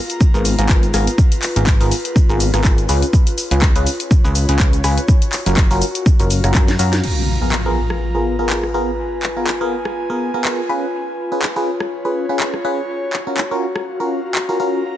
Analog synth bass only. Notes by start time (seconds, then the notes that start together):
0.34 G#1
0.59 G#1
0.94 G#1
1.56 G#1
1.81 G#1
2.29 G#1
2.54 G#1
2.89 C#2
3.51 C#2
3.76 C#2
4.24 C#2
4.49 C#2
4.84 C#2
5.46 F#1
5.71 F#1
6.20 F#1
6.44 F#1
6.55 F#2
6.79 F#2